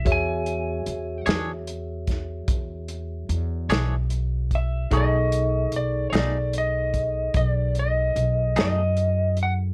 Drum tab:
HH |xxxxxxxxxxxx|xxxxxxxxxxxx|
SD |---o-o---o--|---o-----o--|
BD |o----oo----o|o----oo-----|